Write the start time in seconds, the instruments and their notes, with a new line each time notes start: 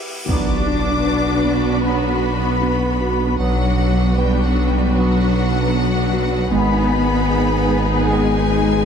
Already playing: sub bass E1, ambient pad B3 E4 G4 B4, synth pluck E4, cymbal swell
0.28 sub bass B1, tuba B1, double bass section B1, trombone section F#3 B3, ambient pad B3 D4 F#4 B4, synth pluck B3, viola section B3 D4, cello section D4, french horn section D4, violin section F#4 B4 D6, impact
0.67 synth pluck D4
1.07 synth pluck B4
1.46 synth pluck B3
1.83 trombone section F#3 B3, french horn section B3, cello section B3, synth pluck B4, violin section B5
2.62 synth pluck B3
3.01 synth pluck F#4
3.38 sub bass B1, double bass section B1, tuba B1, french horn section F#3, trombone section F#3 B3, cello section F#3, viola section B3 D4, ambient pad B3 D4 F#4 B4, synth pluck B3, violin section F#4 B4 F#5
3.79 synth pluck D4
4.17 french horn section G3, cello section G3, synth pluck B4, violin section G5
4.43 french horn section F#3, cello section F#3, violin section F#5
4.57 synth pluck B3
4.69 french horn section G3, cello section G3, violin section G5
4.94 french horn section F#3, trombone section F#3 B3, cello section F#3, synth pluck B4, violin section F#5
5.74 synth pluck B3
6.13 synth pluck F#4
6.51 tuba G#1, double bass section G#1, sub bass G#1, trombone section D#3 B3, synth pluck G#3, ambient pad B3 D#4 G#4 B4, viola section B3 D#4, french horn section B3, cello section B3, violin section G#4 B4 B5
6.91 synth pluck B3
7.30 synth pluck G#4
7.68 synth pluck G#3
8.08 trombone section D#3 B3, cello section G#3, french horn section G#3, synth pluck G#4, violin section G#5